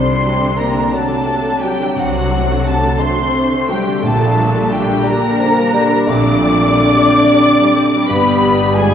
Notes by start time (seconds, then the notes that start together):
Already playing: C2 C3 G3 C4 D4 C5 C6
0.05 D3
0.22 F#3 A3
0.39 D3
0.57 C3 A#3 D4 A#4 A#5
0.75 D3
0.87 A#5
0.91 F#3 A3 F#4 A4 A5
1.09 D3
1.25 C3 A4
1.43 D3
1.60 F#3 G3 F#4 G4 G5
1.77 D3
1.96 C2 C3 F#3 F#4 F#5
2.14 D3
2.31 F#3 A3
2.48 D3
2.64 C3 A3 D4 A4 A5
2.81 D3
2.99 F#3 A3 C4 F#4 C5 C6
3.18 D3
3.34 C3 A4
3.51 D3
3.68 F#3 G3 F#4 G4 G5
3.87 D3
4.02 A#1 A#2 D3 A3 D4 A4 A5
4.21 G3
4.36 D3 G3
4.56 G3
4.70 D3 G3 D4 G4 G5
4.90 G3
5.04 D3 G3 A#3 G4 A#4 A#5
5.24 G3
5.39 D3 F3 D4
5.60 G3
5.73 D3 G3 G4
5.94 G3
6.08 A#1 A#2 D3 A3 C4 D4 D5 D6
6.28 G3
6.42 D3 G3
6.60 G3
6.75 D3 D4
6.93 G3
7.08 D3 G4
7.25 G3
7.42 D3 D4
7.61 G3
7.76 D3 G4
7.95 G3
8.09 G1 G2 G3 B3 G4 B4 B5
8.42 G3
8.74 G#3 F4 G#4 G#5